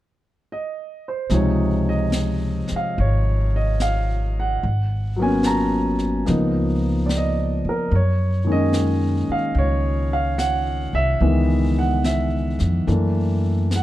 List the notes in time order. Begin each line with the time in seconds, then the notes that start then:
0.52 D#5
1.08 C5
1.30 C#2 C3 F3 G#3 D#4 C#5, brush sweep, snare
1.89 D#5
2.12 snare, hi-hat pedal
2.68 muted upright bass stroke, snare
2.76 F5
2.95 G#1, brush sweep
3.00 C#5
3.56 D#5
3.80 F5, snare, hi-hat pedal
4.40 F#5
4.61 G#1, brush sweep
5.16 F#3 A#3 B3
5.22 C#4 G#5
5.43 A5 A#5, snare, hi-hat pedal
5.99 snare
6.26 C#2 F3 A#3 B3 D#4, brush sweep, snare
7.06 D5, snare, hi-hat pedal
7.17 D#5
7.65 C#3
7.69 A#4
7.91 F#2 C#5, brush sweep
8.44 D#3 G#3 A#3
8.50 C#4 D#5
8.73 snare, hi-hat pedal
9.29 F5, muted upright bass stroke
9.55 C#2 C#5, brush sweep
10.13 F5
10.38 F#5, snare, hi-hat pedal
10.93 C2 E5
11.20 C#2 D#3 E3 G#3 B3, brush sweep
11.79 F#5
12.04 E5, snare, hi-hat pedal
12.59 F2, snare
12.87 F#2 E3 A3 A#3 D4, brush sweep, snare
13.71 snare, hi-hat pedal
13.76 F#5